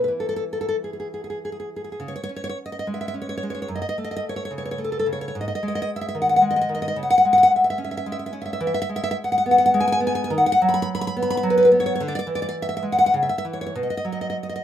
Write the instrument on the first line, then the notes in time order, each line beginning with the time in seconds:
nylon-string guitar
0.04 B4
0.08 E3
0.20 A4
0.29 A4
0.36 A4
0.53 A4
0.61 A4
0.69 A4
0.84 G#4
0.93 G#4
1.00 G#4
1.14 G#4
1.24 G#4
1.30 G#4
1.45 G#4
1.52 G#4
1.60 G#4
1.76 G#4
1.84 G#4
1.92 G#4
2.00 C#3
2.08 C#5
2.16 C#5
2.23 C#5
2.29 C#4
2.36 C#5
2.44 C#5
2.49 C#5
2.66 D#5
2.72 D#5
2.79 D#5
2.87 G#3
2.94 E5
3.01 E5
3.08 E5
3.14 C#4
3.22 C#5
3.29 C#5
3.37 C#5
3.43 G#3
3.50 C#5
3.55 C#5
3.62 C#5
3.68 F#2
3.75 D#5
3.82 D#5
3.89 D#5
3.98 A3
4.04 D#5
4.11 D#5
4.16 D#5
4.29 C#5
4.36 C#5
4.45 C#5
4.51 C#3
4.58 C#5
4.65 C#5
4.71 C#5
4.78 A3
4.84 A4
4.92 A4
4.99 A4
5.06 C#3
5.13 C#5
5.21 C#5
5.28 C#5
5.35 G#2
5.41 D#5
5.48 D#5
5.55 D#5
5.63 G#3
5.68 D#5
5.75 D#5
5.82 D#5
5.96 E5
6.01 E5
6.09 E5
6.15 D#3
6.22 F#5
6.29 F#5
6.36 F#5
6.42 G#3
6.51 D#5
6.56 D#5
6.61 D#5
6.69 D#3
6.75 D#5
6.82 D#5
6.88 D#5
6.96 C#3
7.03 F#5
7.10 F#5
7.18 F#5
7.25 G#3
7.33 F#5
7.38 F#5
7.43 F#5
7.56 E5
7.64 E5
7.70 E5
7.78 C#4
7.84 E5
7.91 E5
7.97 E5
8.06 G#3
8.12 E5
8.26 E5
8.33 C#4
8.42 E5
8.46 E5
8.53 E5
8.61 E3
8.67 E5
8.74 E5
8.82 E5
8.89 G#3
8.96 E5
9.04 E5
9.11 E5
9.24 F#5
9.32 F#5
9.38 F#5
9.46 B3
9.51 F#5
9.58 F#5
9.66 F#5
9.74 G#3
9.80 G#5
9.88 G#5
9.92 G#5
10.00 B3
10.07 G#5
10.15 G#5
10.24 G#5
10.30 D#3
10.38 F#5
10.46 F#5
10.52 F#5
10.62 F#3
10.69 B5
10.74 B5
10.82 B5
10.95 B5
11.01 B5
11.07 B5
11.17 B3
11.22 B5
11.30 B5
11.37 B5
11.43 F#3
11.50 B4
11.58 B4
11.65 B4
11.72 B3
11.80 C#5
11.86 C#5
11.95 C#5
12.00 D3
12.08 D5
12.15 D5
12.27 E3
12.35 D5
12.42 D5
12.49 D5
12.62 E5
12.69 E5
12.77 E5
12.83 G#3
12.92 F#5
12.99 F#5
13.06 F#5
13.14 C#3
13.23 E5
13.29 E5
13.38 E5
13.45 E3
13.53 C#5
13.61 C#5
13.66 C#5
13.75 B2
13.83 D#5
13.90 D#5
13.97 D#5
14.05 F#3
14.12 D#5
14.21 D#5
14.30 D#5
14.43 D#5
14.49 D#5
14.56 D#5